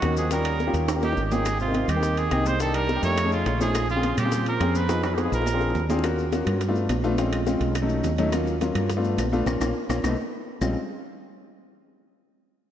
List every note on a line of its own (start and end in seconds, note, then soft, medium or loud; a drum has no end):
0.00 0.69 D#2 medium
0.00 0.14 D#3 medium
0.00 0.23 A#3 medium
0.00 0.23 C#4 medium
0.00 0.23 D#4 medium
0.00 0.14 F#4 loud
0.00 0.23 F#4 medium
0.00 high bongo medium
0.00 low bongo medium
0.00 high conga medium
0.00 high timbale medium
0.00 claves medium
0.00 maracas soft
0.17 0.31 F3 medium
0.17 0.31 G#4 medium
0.17 high conga medium
0.17 maracas medium
0.31 0.73 G3 medium
0.31 0.56 A#3 medium
0.31 0.56 C#4 medium
0.31 0.57 F4 medium
0.31 0.56 G4 medium
0.31 0.74 A#4 medium
0.31 high bongo medium
0.31 high timbale medium
0.31 maracas medium
0.45 high bongo soft
0.45 high conga soft
0.45 high timbale loud
0.45 claves medium
0.45 maracas soft
0.60 high bongo medium
0.60 high conga medium
0.60 maracas soft
0.67 0.87 A#3 medium
0.67 0.87 C#4 medium
0.67 0.87 F4 medium
0.67 0.87 G4 medium
0.74 1.14 D#2 medium
0.74 high conga soft
0.74 high timbale medium
0.74 maracas medium
0.88 high bongo medium
0.88 high conga soft
0.88 high timbale loud
0.88 claves medium
0.88 maracas medium
0.96 1.21 A#3 medium
0.96 1.21 C#4 medium
0.96 1.21 F4 medium
0.96 1.21 G4 medium
1.02 1.24 D#3 medium
1.02 1.25 G4 medium
1.02 high bongo medium
1.02 low timbale medium
1.02 maracas soft
1.12 low bongo medium
1.17 1.83 G#1 medium
1.17 high conga soft
1.17 low timbale medium
1.17 maracas soft
1.24 1.32 D#3 soft
1.24 1.34 G4 medium
1.31 1.60 D#3 medium
1.31 1.46 A#3 medium
1.31 1.46 C#4 medium
1.31 1.46 F4 medium
1.31 1.46 G4 medium
1.31 1.60 G#4 medium
1.31 low bongo medium
1.31 high conga medium
1.31 low timbale medium
1.31 maracas medium
1.45 high bongo medium
1.45 high conga soft
1.45 high timbale medium
1.45 claves medium
1.45 maracas medium
1.60 1.91 C3 medium
1.60 1.91 F4 medium
1.60 high conga soft
1.60 maracas soft
1.68 1.87 A#3 medium
1.68 1.87 C4 medium
1.68 1.88 D#4 medium
1.68 1.88 G4 medium
1.74 high bongo medium
1.74 high conga medium
1.74 high timbale medium
1.74 maracas soft
1.88 2.28 D#2 medium
1.88 2.17 D#3 medium
1.88 2.20 G4 medium
1.88 high conga soft
1.88 low conga medium
1.88 high timbale medium
1.88 claves medium
1.88 maracas medium
1.96 2.21 A#3 medium
1.96 2.21 C4 medium
1.96 2.21 D#4 medium
1.96 2.21 G4 medium
2.03 high bongo medium
2.03 high conga soft
2.03 maracas medium
2.17 2.47 D#3 medium
2.17 2.48 G#4 loud
2.17 high conga soft
2.17 high timbale medium
2.17 maracas soft
2.31 2.98 C2 medium
2.31 2.52 A#3 medium
2.31 2.52 C4 medium
2.31 2.52 D#4 medium
2.31 2.52 G4 medium
2.31 high bongo medium
2.31 low bongo medium
2.31 high conga medium
2.31 high timbale medium
2.31 claves medium
2.31 maracas soft
2.46 2.60 G#3 medium
2.46 2.60 C5 loud
2.46 high conga medium
2.46 maracas medium
2.60 2.76 D#3 medium
2.60 2.86 A#3 medium
2.60 2.86 D4 medium
2.60 2.86 D#4 medium
2.60 2.86 G4 medium
2.60 2.77 A4 loud
2.60 high bongo medium
2.60 high conga soft
2.60 high timbale medium
2.60 maracas medium
2.74 3.03 G3 medium
2.74 3.03 A#4 loud
2.74 high bongo soft
2.74 high conga soft
2.74 high timbale loud
2.74 claves medium
2.74 maracas soft
2.89 high bongo medium
2.89 high conga medium
2.89 maracas soft
2.96 3.16 A#3 medium
2.96 3.16 D4 medium
2.96 3.16 D#4 medium
2.96 3.16 G4 medium
3.03 3.43 F2 medium
3.03 3.30 A3 medium
3.03 3.30 C#5 loud
3.03 high conga soft
3.03 high timbale medium
3.03 maracas medium
3.17 high bongo medium
3.17 high conga soft
3.17 high timbale loud
3.17 claves medium
3.17 maracas medium
3.25 3.50 A3 medium
3.25 3.50 C#4 medium
3.25 3.50 D#4 medium
3.25 3.50 G#4 medium
3.32 3.59 C#3 medium
3.32 3.59 F4 medium
3.32 high bongo soft
3.32 high conga soft
3.32 maracas soft
3.46 4.12 A#1 medium
3.46 high bongo medium
3.46 low bongo medium
3.46 high conga soft
3.46 high timbale medium
3.46 maracas soft
3.60 3.87 F3 medium
3.60 3.75 A3 medium
3.60 3.75 C#4 medium
3.60 3.75 D#4 medium
3.60 3.75 G#4 medium
3.60 3.88 G#4 medium
3.60 high bongo soft
3.60 high conga medium
3.60 maracas medium
3.75 high bongo medium
3.75 high conga soft
3.75 high timbale medium
3.75 claves medium
3.75 maracas medium
3.89 4.16 C#3 medium
3.89 4.17 F4 loud
3.89 high conga soft
3.89 maracas soft
3.96 4.16 C4 medium
3.96 4.16 C#4 medium
3.96 4.16 F4 medium
3.96 4.16 G#4 medium
4.03 high bongo medium
4.03 high conga loud
4.03 high timbale medium
4.03 maracas soft
4.17 4.57 A#2 medium
4.17 4.45 C#3 medium
4.17 4.45 G4 medium
4.17 high conga soft
4.17 low conga medium
4.17 high timbale medium
4.17 claves medium
4.17 maracas medium
4.25 4.50 C4 medium
4.25 4.50 C#4 medium
4.25 4.50 F4 medium
4.25 4.50 G#4 medium
4.32 high bongo medium
4.32 high conga soft
4.32 low conga medium
4.32 maracas medium
4.46 4.75 F3 medium
4.46 4.78 A#4 medium
4.46 high conga soft
4.46 high timbale medium
4.46 maracas soft
4.60 5.27 F2 medium
4.60 4.81 C4 medium
4.60 4.81 C#4 medium
4.60 4.81 F4 medium
4.60 4.81 G#4 medium
4.60 high bongo medium
4.60 low bongo medium
4.60 high conga medium
4.60 high timbale medium
4.60 low timbale medium
4.60 claves medium
4.60 maracas soft
4.75 5.04 F3 medium
4.75 5.04 B4 loud
4.75 high conga medium
4.75 maracas medium
4.89 5.14 B3 medium
4.89 5.14 D#4 medium
4.89 5.14 F4 medium
4.89 5.14 G#4 medium
4.89 high bongo medium
4.89 high conga soft
4.89 high timbale medium
4.89 maracas medium
5.03 5.15 F#3 medium
5.03 5.16 B4 medium
5.03 high bongo soft
5.03 high conga soft
5.03 high timbale loud
5.03 claves medium
5.03 maracas soft
5.14 5.19 D#3 soft
5.14 5.32 F3 medium
5.14 5.21 G4 medium
5.14 high bongo medium
5.14 high timbale medium
5.18 5.33 G#4 medium
5.18 high conga medium
5.18 maracas soft
5.25 5.45 B3 medium
5.25 5.45 D#4 medium
5.25 5.45 F4 medium
5.25 5.45 G#4 medium
5.32 5.72 A#1 medium
5.32 5.86 F3 medium
5.32 5.86 A#4 medium
5.32 high bongo medium
5.32 high conga soft
5.32 maracas medium
5.42 high bongo medium
5.46 high conga soft
5.46 low timbale medium
5.46 claves medium
5.46 maracas medium
5.54 5.79 C4 medium
5.54 5.79 D4 medium
5.54 5.79 F4 medium
5.54 5.79 G#4 medium
5.61 high bongo medium
5.61 high conga soft
5.61 maracas soft
5.70 low bongo medium
5.75 6.41 D#2 medium
5.75 low timbale medium
5.75 maracas soft
5.80 low bongo medium
5.89 6.04 C4 medium
5.89 6.04 D4 medium
5.89 6.02 F4 medium
5.89 6.04 G#4 medium
5.89 high conga medium
5.89 low timbale medium
5.89 maracas medium
5.99 low bongo medium
6.03 6.24 A#3 medium
6.03 6.24 C#4 medium
6.03 6.24 F4 medium
6.03 6.24 F#4 medium
6.03 high bongo medium
6.03 high conga soft
6.03 high timbale medium
6.03 claves medium
6.03 maracas medium
6.18 high bongo soft
6.18 high conga soft
6.18 maracas soft
6.32 6.58 A#3 medium
6.32 6.58 C#4 medium
6.32 6.58 F4 medium
6.32 6.58 F#4 medium
6.32 high bongo medium
6.32 high conga medium
6.32 high timbale medium
6.32 low timbale medium
6.32 maracas medium
6.46 6.86 G2 medium
6.46 high bongo soft
6.46 high conga soft
6.46 low conga medium
6.46 high timbale medium
6.46 claves medium
6.46 maracas soft
6.61 high bongo medium
6.61 high conga soft
6.61 high timbale medium
6.61 maracas medium
6.68 6.93 A3 medium
6.68 6.93 B3 medium
6.68 6.93 D4 medium
6.68 6.93 F4 loud
6.75 maracas soft
6.89 7.55 A#1 medium
6.89 high bongo soft
6.89 low bongo medium
6.89 high conga medium
6.89 high timbale medium
6.89 low timbale medium
6.89 claves medium
6.89 maracas medium
7.04 7.14 A3 medium
7.04 7.14 B3 medium
7.04 7.14 D4 medium
7.04 7.14 F4 loud
7.04 high bongo soft
7.04 high conga medium
7.04 maracas soft
7.18 7.38 G#3 medium
7.18 7.38 C4 medium
7.18 7.38 C#4 medium
7.18 7.38 F4 loud
7.18 high bongo medium
7.18 high timbale medium
7.18 maracas medium
7.32 high bongo soft
7.32 high timbale medium
7.32 claves medium
7.32 maracas soft
7.47 7.72 G#3 medium
7.47 7.72 C4 medium
7.47 7.72 C#4 medium
7.47 7.72 F4 medium
7.47 high bongo medium
7.47 high conga medium
7.47 low timbale medium
7.47 maracas medium
7.61 8.01 B1 medium
7.61 high bongo soft
7.61 high conga soft
7.61 high timbale medium
7.61 maracas soft
7.75 high bongo medium
7.75 high conga soft
7.75 high timbale loud
7.75 claves medium
7.75 maracas medium
7.82 8.07 F#3 medium
7.82 8.07 A3 medium
7.82 8.08 C#4 medium
7.82 8.08 D#4 medium
7.89 high conga soft
7.89 maracas soft
8.04 8.70 D#2 medium
8.04 high bongo soft
8.04 low bongo medium
8.04 high conga medium
8.04 high timbale medium
8.04 low timbale medium
8.04 maracas medium
8.18 8.28 F#3 loud
8.18 8.29 A3 medium
8.18 8.28 C#4 medium
8.18 8.28 D#4 loud
8.18 high bongo soft
8.18 high conga medium
8.18 high timbale medium
8.18 maracas soft
8.32 8.53 F#3 medium
8.32 8.53 A#3 medium
8.32 8.53 C#4 medium
8.32 8.53 F4 medium
8.32 high bongo medium
8.32 high timbale medium
8.32 claves medium
8.32 maracas medium
8.47 high bongo soft
8.47 high conga soft
8.47 maracas soft
8.61 8.86 F#3 medium
8.61 8.86 A#3 medium
8.61 8.86 C#4 medium
8.61 8.87 F4 medium
8.61 high bongo medium
8.61 high conga medium
8.61 high timbale medium
8.61 low timbale medium
8.61 maracas medium
8.75 9.15 G2 medium
8.75 high bongo soft
8.75 high conga soft
8.75 low conga medium
8.75 high timbale medium
8.75 claves medium
8.75 maracas soft
8.89 high bongo medium
8.89 high conga soft
8.89 low conga medium
8.89 high timbale medium
8.89 maracas medium
8.97 9.22 A3 medium
8.97 9.22 B3 medium
8.97 9.22 D4 medium
8.97 9.22 F4 medium
9.04 high conga soft
9.04 maracas soft
9.18 9.45 A#1 medium
9.18 high bongo soft
9.18 low bongo medium
9.18 high conga medium
9.18 high timbale medium
9.18 low timbale medium
9.18 claves medium
9.18 maracas medium
9.32 9.43 A3 medium
9.32 9.43 B3 medium
9.32 9.43 D4 medium
9.32 9.43 F4 loud
9.32 high bongo soft
9.32 high conga medium
9.32 maracas soft
9.46 9.57 A#1 medium
9.46 9.56 A#3 medium
9.46 9.56 C#4 medium
9.46 9.56 F4 medium
9.46 low bongo loud
9.46 high conga medium
9.46 high timbale medium
9.46 claves medium
9.46 maracas medium
9.60 9.72 A#1 medium
9.60 9.71 A#3 medium
9.60 9.71 C#4 medium
9.60 9.71 F4 medium
9.60 low bongo medium
9.60 high conga loud
9.60 high timbale loud
9.60 claves medium
9.60 maracas medium
9.89 10.00 A#1 medium
9.89 9.99 A#3 loud
9.89 9.99 C#4 medium
9.89 9.99 F4 medium
9.89 low bongo medium
9.89 high conga medium
9.89 high timbale loud
9.89 claves medium
9.89 maracas medium
10.03 10.14 B1 medium
10.03 10.13 A3 medium
10.03 10.13 B3 medium
10.03 10.13 D#4 medium
10.03 low bongo loud
10.03 high conga medium
10.03 high timbale loud
10.03 claves loud
10.03 maracas medium
10.61 10.75 A#1 medium
10.61 10.75 G#3 medium
10.61 10.75 C4 medium
10.61 10.75 C#4 medium
10.61 10.75 F4 medium
10.61 low bongo loud
10.61 low conga medium
10.61 low timbale medium
10.61 claves medium
10.61 maracas medium